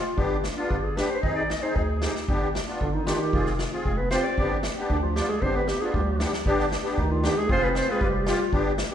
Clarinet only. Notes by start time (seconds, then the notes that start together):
Already playing: F4
0.68 G#4
0.72 G4
0.83 G#4
0.96 B4
1.10 B4 C5
1.15 C5
1.22 D#5
1.35 D5
1.50 D#5
1.62 C5
1.76 G#4
2.03 G4
2.80 D4
2.94 D#4
3.06 F4
3.19 G4
3.85 G#4
3.97 B4
4.11 C5
4.24 D5
4.91 D4
5.03 F4
5.15 G4
5.29 G#4
5.42 C5
5.56 B4
5.68 G4
5.81 G#4
5.95 G4
6.98 D#4
7.11 F4
7.25 G4
7.38 G#4
7.52 C5
7.64 B4
7.77 C5
7.91 G#4
8.02 G4
8.20 G4
8.28 F4